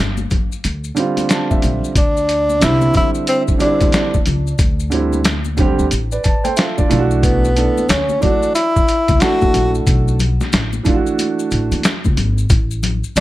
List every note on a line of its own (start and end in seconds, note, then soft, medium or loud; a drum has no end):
0.00 0.24 G1 medium
0.17 high conga medium
0.17 maracas soft
0.31 kick medium
0.31 closed hi-hat medium
0.31 low conga medium
0.31 maracas soft
0.52 maracas soft
0.64 0.90 D2 medium
0.64 closed hi-hat medium
0.64 maracas medium
0.84 maracas soft
0.95 1.90 D3 medium
0.95 1.90 G3 medium
0.95 1.91 C4 medium
0.95 closed hi-hat medium
0.95 maracas soft
0.99 1.92 F4 medium
1.17 closed hi-hat soft
1.17 high conga medium
1.17 maracas soft
1.29 1.49 A5 medium
1.29 snare loud
1.29 closed hi-hat medium
1.29 maracas medium
1.50 1.92 E5 medium
1.50 kick medium
1.50 high conga soft
1.50 maracas soft
1.62 1.79 A#1 medium
1.62 closed hi-hat medium
1.62 low conga medium
1.62 maracas soft
1.84 maracas soft
1.95 2.64 D2 medium
1.95 2.65 D4 medium
1.95 kick loud
1.95 closed hi-hat medium
1.95 maracas medium
2.17 maracas soft
2.29 closed hi-hat medium
2.29 maracas soft
2.50 high conga soft
2.50 maracas soft
2.60 2.87 C2 medium
2.60 3.55 D3 medium
2.60 3.55 G3 medium
2.60 3.56 C4 medium
2.60 snare loud
2.60 closed hi-hat medium
2.60 maracas medium
2.64 2.96 E4 loud
2.64 3.57 E4 medium
2.82 high conga soft
2.82 maracas soft
2.94 3.11 E4 medium
2.94 kick medium
2.94 closed hi-hat medium
2.94 low conga medium
2.94 maracas soft
3.15 maracas soft
3.27 3.43 C4 medium
3.27 closed hi-hat medium
3.27 maracas medium
3.48 kick medium
3.48 maracas soft
3.58 4.09 D3 medium
3.58 4.10 G3 medium
3.58 4.10 C4 medium
3.58 4.23 D4 medium
3.58 closed hi-hat medium
3.58 maracas soft
3.62 4.11 E4 medium
3.81 3.91 E2 medium
3.81 kick medium
3.81 closed hi-hat soft
3.81 high conga medium
3.81 maracas soft
3.92 snare loud
3.92 closed hi-hat medium
3.92 maracas medium
4.14 kick medium
4.14 high conga soft
4.14 maracas soft
4.26 4.52 C#2 medium
4.26 closed hi-hat medium
4.26 low conga medium
4.26 maracas soft
4.47 maracas soft
4.59 5.75 D2 medium
4.59 kick loud
4.59 closed hi-hat medium
4.59 maracas medium
4.80 maracas soft
4.90 5.17 D3 medium
4.90 5.18 G3 medium
4.90 5.18 C4 medium
4.90 closed hi-hat medium
4.90 maracas soft
4.94 5.19 E4 medium
5.13 high conga soft
5.13 maracas soft
5.25 snare loud
5.25 closed hi-hat medium
5.25 maracas medium
5.45 high conga soft
5.45 maracas soft
5.57 5.83 D3 medium
5.57 5.84 G3 medium
5.57 5.84 C4 medium
5.57 5.85 G4 medium
5.57 kick medium
5.57 closed hi-hat medium
5.57 low conga medium
5.57 maracas soft
5.79 5.88 D2 medium
5.79 maracas soft
5.91 6.16 A1 medium
5.91 closed hi-hat medium
5.91 maracas medium
6.12 6.44 B4 soft
6.12 6.43 D5 medium
6.12 maracas soft
6.24 6.43 A5 medium
6.24 kick medium
6.24 closed hi-hat medium
6.24 maracas soft
6.44 6.55 A4 soft
6.44 6.56 C5 medium
6.44 6.56 G5 medium
6.44 closed hi-hat soft
6.44 high conga medium
6.44 maracas soft
6.56 6.76 F4 medium
6.56 6.77 A4 medium
6.56 6.76 E5 medium
6.56 snare loud
6.56 closed hi-hat medium
6.56 maracas medium
6.77 6.89 D4 soft
6.77 6.90 F4 medium
6.77 7.20 D5 medium
6.77 kick medium
6.77 high conga soft
6.77 maracas soft
6.88 7.66 B1 medium
6.88 7.45 E3 medium
6.88 7.46 A3 medium
6.88 7.46 D4 medium
6.88 closed hi-hat medium
6.88 low conga medium
6.88 maracas soft
6.92 6.99 F4 medium
6.98 7.50 F#4 medium
7.11 maracas soft
7.23 7.91 B3 medium
7.23 kick loud
7.23 closed hi-hat medium
7.23 maracas medium
7.45 maracas soft
7.54 7.81 E3 medium
7.54 7.82 A3 medium
7.54 7.82 D4 medium
7.54 7.83 A4 medium
7.54 closed hi-hat medium
7.54 maracas soft
7.78 high conga soft
7.78 maracas soft
7.89 8.14 D2 medium
7.89 8.24 C#4 medium
7.89 snare loud
7.89 closed hi-hat medium
7.89 maracas medium
8.09 high conga soft
8.09 maracas soft
8.20 8.46 E3 medium
8.20 8.47 A3 medium
8.20 8.54 D4 medium
8.20 8.48 D4 medium
8.20 kick medium
8.20 closed hi-hat medium
8.20 low conga medium
8.20 maracas soft
8.24 8.48 F#4 medium
8.43 maracas soft
8.55 9.23 E4 loud
8.55 closed hi-hat medium
8.55 maracas medium
8.76 kick medium
8.76 maracas soft
8.88 closed hi-hat medium
8.88 maracas soft
9.08 9.18 C#2 medium
9.08 kick medium
9.08 closed hi-hat soft
9.08 high conga medium
9.08 maracas soft
9.18 10.14 E3 medium
9.18 10.14 A3 medium
9.18 10.15 D4 medium
9.18 9.75 F#4 medium
9.18 10.16 A4 medium
9.18 snare loud
9.18 closed hi-hat medium
9.18 maracas medium
9.42 kick medium
9.42 high conga soft
9.42 maracas soft
9.54 9.79 A#1 medium
9.54 closed hi-hat medium
9.54 low conga medium
9.54 maracas soft
9.75 maracas soft
9.87 10.37 B1 medium
9.87 kick loud
9.87 closed hi-hat medium
9.87 maracas medium
10.08 maracas soft
10.20 closed hi-hat medium
10.20 low conga medium
10.20 maracas soft
10.41 snare soft
10.41 high conga soft
10.41 maracas soft
10.53 10.78 A1 medium
10.53 snare loud
10.53 closed hi-hat medium
10.53 maracas medium
10.73 high conga soft
10.73 maracas soft
10.83 11.79 E3 medium
10.83 11.79 A3 medium
10.83 11.80 D4 medium
10.83 10.95 F4 medium
10.83 kick medium
10.83 closed hi-hat medium
10.83 low conga medium
10.83 maracas soft
10.94 11.84 F#4 medium
11.07 maracas soft
11.19 closed hi-hat medium
11.19 high conga soft
11.19 maracas medium
11.39 maracas soft
11.51 11.68 A1 medium
11.51 closed hi-hat medium
11.51 maracas soft
11.72 11.81 E2 medium
11.72 closed hi-hat soft
11.72 high conga soft
11.72 maracas soft
11.83 snare loud
11.83 closed hi-hat medium
11.83 maracas medium
12.05 12.15 C#2 medium
12.05 kick medium
12.05 high conga soft
12.05 maracas soft
12.17 12.43 G#1 medium
12.17 closed hi-hat medium
12.17 low conga medium
12.17 maracas soft
12.38 maracas soft
12.50 13.01 A1 medium
12.50 kick loud
12.50 closed hi-hat medium
12.50 maracas medium
12.71 maracas soft
12.83 closed hi-hat medium
12.83 low conga medium
12.83 maracas soft
13.04 maracas soft
13.16 13.20 G1 medium
13.16 13.20 D4 loud
13.16 closed hi-hat loud
13.16 maracas medium